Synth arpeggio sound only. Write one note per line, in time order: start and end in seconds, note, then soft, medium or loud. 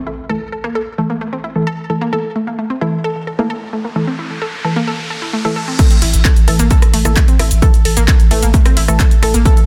0.07 0.14 E4 medium
0.29 0.34 A4 loud
0.52 0.63 A4 medium
0.64 0.74 A#3 loud
0.75 0.82 A4 loud
0.98 1.09 A3 medium
1.10 1.14 A#3 medium
1.21 1.28 A3 medium
1.33 1.40 C4 medium
1.44 1.51 E4 medium
1.67 1.71 A4 loud
1.90 2.00 A4 medium
2.01 2.12 A#3 loud
2.13 2.20 A4 medium
2.36 2.46 A3 medium
2.47 2.51 A#3 medium
2.58 2.66 A3 medium
2.70 2.77 C4 medium
2.81 2.88 E4 medium
3.04 3.09 A4 loud
3.27 3.38 A4 medium
3.39 3.49 A#3 loud
3.50 3.57 A4 loud
3.73 3.84 A3 medium
3.85 3.89 A#3 medium
3.96 4.03 A3 medium
4.07 4.14 C4 medium
4.19 4.26 E4 medium
4.42 4.46 A4 medium
4.65 4.75 A4 medium
4.76 4.87 A#3 loud
4.87 4.95 A4 loud
5.10 5.21 A4 medium
5.22 5.26 E4 medium
5.33 5.40 A3 medium
5.45 5.49 A3 loud
5.56 5.63 A4 loud
5.68 5.78 C4 medium
5.79 5.86 A3 medium
5.91 5.98 C4 medium
6.02 6.09 E4 medium
6.25 6.29 A4 loud
6.48 6.58 A4 medium
6.59 6.70 A#3 loud
6.71 6.78 A4 loud
6.94 7.04 A3 medium
7.05 7.09 A#3 medium
7.16 7.24 A3 medium
7.28 7.35 C4 medium
7.39 7.46 E4 medium
7.62 7.67 A4 medium
7.85 7.96 A4 medium
7.97 8.07 A#3 loud
8.08 8.15 A4 medium
8.31 8.42 A3 medium
8.43 8.47 A#3 medium
8.54 8.61 A3 medium
8.66 8.72 C4 medium
8.77 8.84 E4 medium
9.00 9.04 A4 loud
9.23 9.33 A4 medium
9.34 9.45 A#3 loud
9.45 9.53 A4 loud